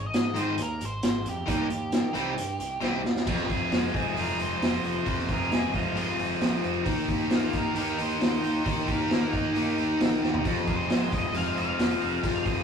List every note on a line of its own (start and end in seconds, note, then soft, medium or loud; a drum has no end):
0.00 0.13 G#1 medium
0.00 0.13 G#3 soft
0.00 0.14 C4 soft
0.00 0.14 D#4 medium
0.00 0.14 G#4 medium
0.07 0.36 D#5 loud
0.14 0.57 G#2 medium
0.14 0.37 G#2 medium
0.14 0.37 D#3 medium
0.14 0.37 G#3 medium
0.14 0.36 C4 medium
0.14 0.35 D#4 medium
0.14 0.35 G#4 medium
0.14 snare loud
0.14 closed hi-hat medium
0.34 0.53 G#2 medium
0.34 0.53 D#3 medium
0.34 0.57 G#3 soft
0.34 0.58 C4 soft
0.34 0.59 D#4 soft
0.34 0.59 G#4 medium
0.34 closed hi-hat medium
0.40 0.61 C5 medium
0.58 0.80 D#2 medium
0.58 0.80 G#3 medium
0.58 0.80 C4 medium
0.58 0.79 D#4 medium
0.58 0.78 G#4 medium
0.58 closed hi-hat medium
0.62 0.83 A#4 medium
0.80 1.03 G#1 medium
0.80 1.02 G#3 soft
0.80 1.02 C4 medium
0.80 1.02 D#4 medium
0.80 1.02 G#4 medium
0.80 closed hi-hat medium
0.85 1.25 C5 medium
1.02 1.26 G#1 medium
1.02 1.25 G#2 medium
1.02 1.25 D#3 medium
1.02 1.25 G#3 medium
1.02 1.25 C4 medium
1.02 1.24 D#4 medium
1.02 1.23 G#4 medium
1.02 snare loud
1.02 closed hi-hat medium
1.24 1.47 F2 medium
1.24 1.47 G#3 soft
1.24 1.47 C4 medium
1.24 1.47 D#4 soft
1.24 1.47 G#4 soft
1.24 closed hi-hat medium
1.29 3.02 G4 medium
1.47 1.70 D#2 medium
1.47 1.66 D#3 medium
1.47 1.70 G3 medium
1.47 1.70 A#3 medium
1.47 1.69 D#4 medium
1.47 1.68 G4 medium
1.47 kick loud
1.47 closed hi-hat medium
1.69 1.92 D#2 medium
1.69 1.92 A#3 soft
1.69 1.92 D#4 medium
1.69 1.92 G4 medium
1.69 closed hi-hat medium
1.92 2.15 D#3 medium
1.92 2.14 D#3 medium
1.92 2.15 G3 medium
1.92 2.15 A#3 medium
1.92 2.15 D#4 medium
1.92 2.13 G4 medium
1.92 snare loud
1.92 closed hi-hat medium
2.14 2.36 C2 medium
2.14 2.33 C3 medium
2.14 2.33 G3 medium
2.14 2.37 C4 soft
2.14 2.37 D#4 medium
2.14 2.37 G4 medium
2.14 closed hi-hat medium
2.37 2.59 G2 medium
2.37 2.60 D#3 medium
2.37 2.60 C4 medium
2.37 2.59 D#4 medium
2.37 2.57 G4 medium
2.37 closed hi-hat medium
2.59 2.81 C2 medium
2.59 2.81 C4 soft
2.59 2.81 D#4 medium
2.59 2.81 G4 medium
2.59 closed hi-hat medium
2.81 3.03 C2 medium
2.81 3.04 C3 medium
2.81 3.04 D#3 medium
2.81 3.00 G3 medium
2.81 3.04 C4 medium
2.81 3.03 D#4 medium
2.81 3.02 G4 loud
2.81 snare medium
3.03 3.26 D#2 medium
3.03 3.27 C4 medium
3.03 3.27 D#4 medium
3.03 3.26 G4 medium
3.03 snare medium
3.16 snare medium
3.26 3.43 F1 medium
3.26 3.49 F2 medium
3.26 3.49 C3 medium
3.26 3.49 F3 medium
3.26 3.48 G#3 medium
3.26 3.47 C4 medium
3.26 3.47 F4 medium
3.26 kick loud
3.26 crash loud
3.39 snare soft
3.48 3.65 F1 medium
3.48 3.69 F3 soft
3.48 3.70 G#3 medium
3.48 3.70 C4 medium
3.48 3.71 F4 medium
3.48 4.14 G#4 medium
3.48 kick medium
3.48 open hi-hat medium
3.70 3.87 F1 medium
3.70 3.93 F3 medium
3.70 3.94 G#3 medium
3.70 3.95 F4 medium
3.70 snare loud
3.70 open hi-hat medium
3.93 4.10 F1 medium
3.93 4.16 G#3 soft
3.93 4.16 C4 soft
3.93 4.16 F4 medium
3.93 4.17 G#4 medium
3.93 kick medium
3.93 open hi-hat medium
4.15 4.32 F1 medium
4.15 4.39 F2 medium
4.15 4.39 C3 medium
4.15 4.39 F3 medium
4.15 4.39 G#3 medium
4.15 4.38 C4 medium
4.15 4.38 F4 medium
4.15 5.28 G#4 medium
4.15 open hi-hat medium
4.21 4.42 A#4 medium
4.39 4.54 F1 medium
4.39 4.59 F3 soft
4.39 4.61 G#3 soft
4.39 4.61 C4 soft
4.39 4.61 F4 soft
4.39 5.28 C5 medium
4.39 open hi-hat medium
4.61 4.77 F1 medium
4.61 4.83 F3 medium
4.61 4.84 G#3 medium
4.61 snare loud
4.61 open hi-hat medium
4.83 4.98 F1 medium
4.83 5.06 F3 soft
4.83 5.06 G#3 soft
4.83 5.06 C4 medium
4.83 5.06 F4 soft
4.83 open hi-hat medium
5.06 5.22 F1 medium
5.06 5.29 F2 medium
5.06 5.29 C3 medium
5.06 5.29 F3 medium
5.06 5.29 G#3 medium
5.06 5.28 C4 medium
5.06 5.28 F4 medium
5.06 kick loud
5.06 open hi-hat medium
5.18 snare soft
5.29 5.44 F1 medium
5.29 5.50 F3 soft
5.29 5.51 G#3 soft
5.29 5.51 C4 medium
5.29 5.51 F4 medium
5.29 5.96 G#4 medium
5.29 5.52 A#4 medium
5.29 kick medium
5.29 open hi-hat medium
5.50 5.66 F1 medium
5.50 5.73 F3 medium
5.50 5.74 G#3 medium
5.50 5.73 C4 medium
5.50 5.73 F4 medium
5.50 snare loud
5.50 open hi-hat medium
5.54 5.75 G#4 medium
5.74 5.89 F1 medium
5.74 5.95 F3 soft
5.74 5.95 G#3 soft
5.74 5.95 C4 medium
5.74 5.96 F4 medium
5.74 6.18 F4 medium
5.74 kick medium
5.74 open hi-hat medium
5.95 6.11 C2 medium
5.95 6.18 F2 medium
5.95 6.18 C3 medium
5.95 6.19 F3 medium
5.95 6.19 G#3 medium
5.95 6.18 C4 medium
5.95 6.18 F4 medium
5.95 6.87 G#4 medium
5.95 open hi-hat medium
6.18 6.34 F1 medium
6.18 6.40 F3 soft
6.18 6.41 G#3 soft
6.18 6.41 C4 medium
6.18 6.41 F4 medium
6.18 open hi-hat medium
6.41 6.56 C2 medium
6.41 6.64 F3 medium
6.41 6.64 G#3 medium
6.41 6.63 C4 medium
6.41 snare loud
6.41 open hi-hat medium
6.64 6.79 F1 medium
6.64 6.85 F3 soft
6.64 6.86 G#3 medium
6.64 6.86 C4 medium
6.64 6.86 F4 medium
6.64 open hi-hat medium
6.86 7.01 D#2 medium
6.86 7.08 D#3 medium
6.86 7.09 A#3 medium
6.86 7.08 D#4 medium
6.86 7.06 G4 loud
6.86 kick loud
6.86 open hi-hat medium
7.08 7.24 D#2 medium
7.08 7.31 A#3 soft
7.08 7.75 G4 medium
7.08 kick medium
7.08 open hi-hat medium
7.30 7.47 D#2 medium
7.30 7.54 A#3 medium
7.30 7.54 F4 loud
7.30 7.52 G4 medium
7.30 snare loud
7.30 open hi-hat medium
7.53 7.69 D#2 medium
7.53 7.75 A#3 soft
7.53 7.75 D#4 soft
7.53 7.76 G4 medium
7.53 7.77 A#4 medium
7.53 kick medium
7.53 snare soft
7.53 open hi-hat medium
7.75 7.92 D#2 medium
7.75 7.98 D#3 medium
7.75 7.98 A#3 medium
7.75 7.98 D#4 medium
7.75 7.97 G4 medium
7.75 8.02 A#4 medium
7.75 open hi-hat medium
7.98 8.15 D#2 medium
7.98 8.21 A#3 soft
7.98 8.21 D#4 soft
7.98 8.21 G4 medium
7.98 open hi-hat medium
8.02 8.88 C5 medium
8.21 8.37 D#2 medium
8.21 8.44 D#3 medium
8.21 snare loud
8.21 open hi-hat medium
8.43 8.59 D#2 medium
8.43 8.65 A#3 soft
8.43 8.65 D#4 soft
8.43 8.65 G4 medium
8.43 open hi-hat medium
8.65 8.81 D#2 medium
8.65 8.88 D#3 medium
8.65 8.88 A#3 medium
8.65 8.87 D#4 medium
8.65 8.86 G4 medium
8.65 kick loud
8.65 open hi-hat medium
8.87 9.04 D#2 medium
8.87 9.10 A#3 soft
8.87 9.10 G4 medium
8.87 kick medium
8.87 open hi-hat medium
8.92 9.12 A#4 medium
9.10 9.25 D#2 medium
9.10 9.33 D#3 medium
9.10 9.33 A#3 medium
9.10 snare loud
9.10 open hi-hat medium
9.15 9.35 A#4 medium
9.31 9.49 D#2 medium
9.31 9.76 D#4 medium
9.31 kick medium
9.31 open hi-hat medium
9.37 9.78 D#4 medium
9.55 9.71 A#2 medium
9.55 9.77 D#3 medium
9.55 9.77 A#3 medium
9.55 9.77 D#4 medium
9.55 9.75 G4 medium
9.55 open hi-hat medium
9.76 9.94 D#2 medium
9.76 9.98 A#3 soft
9.76 9.99 D#4 soft
9.76 10.00 G4 medium
9.76 open hi-hat medium
9.99 10.16 A#1 medium
9.99 10.22 D#3 medium
9.99 10.22 A#3 medium
9.99 10.21 G4 medium
9.99 snare loud
9.99 open hi-hat medium
10.22 10.38 D#2 medium
10.22 10.45 A#3 soft
10.22 10.45 D#4 soft
10.22 10.45 G4 medium
10.22 snare medium
10.34 floor tom medium
10.44 10.60 F1 medium
10.44 10.67 F2 medium
10.44 10.67 C3 medium
10.44 10.67 F3 medium
10.44 10.67 G#3 medium
10.44 10.66 C4 medium
10.44 12.63 C4 medium
10.44 12.63 F4 medium
10.44 12.63 G#4 medium
10.44 10.65 G#4 medium
10.44 12.63 F5 medium
10.44 kick loud
10.44 open hi-hat medium
10.57 snare soft
10.66 10.83 F1 medium
10.66 10.88 F3 soft
10.66 10.89 G#3 soft
10.66 10.89 C4 medium
10.66 10.89 G#4 medium
10.66 11.12 C5 loud
10.66 kick medium
10.66 open hi-hat medium
10.90 11.05 F1 medium
10.90 11.12 G#3 medium
10.90 11.10 G#4 medium
10.90 snare loud
10.90 open hi-hat medium
11.12 11.28 F1 medium
11.12 11.33 F3 soft
11.12 11.34 G#3 soft
11.12 11.34 C4 soft
11.12 11.34 G#4 medium
11.12 11.35 D#5 medium
11.12 kick medium
11.12 open hi-hat medium
11.34 11.50 F1 medium
11.34 11.56 F2 medium
11.34 11.57 C3 medium
11.34 11.57 F3 medium
11.34 11.57 G#3 medium
11.34 11.56 C4 medium
11.34 11.55 G#4 medium
11.34 11.57 F5 medium
11.34 open hi-hat medium
11.56 11.72 F1 medium
11.56 11.76 F3 soft
11.56 11.78 G#3 soft
11.56 11.78 C4 soft
11.56 11.79 G#4 medium
11.56 12.44 F5 medium
11.56 open hi-hat medium
11.78 11.94 F1 medium
11.78 12.00 F3 medium
11.78 12.01 G#3 medium
11.78 12.01 C4 medium
11.78 12.00 G#4 medium
11.78 snare loud
11.78 open hi-hat medium
12.01 12.17 F1 medium
12.01 12.23 F3 soft
12.01 12.23 G#3 soft
12.01 12.24 C4 medium
12.01 12.23 G#4 medium
12.01 open hi-hat medium
12.23 12.38 F1 medium
12.23 12.46 F2 medium
12.23 12.46 C3 medium
12.23 12.46 F3 loud
12.23 12.46 G#3 medium
12.23 12.46 C4 medium
12.23 12.45 G#4 loud
12.23 kick loud
12.23 open hi-hat medium
12.46 12.61 F1 medium
12.46 12.63 F3 medium
12.46 12.63 G#3 medium
12.46 12.63 C4 medium
12.46 12.63 G#4 medium
12.46 kick medium
12.46 open hi-hat medium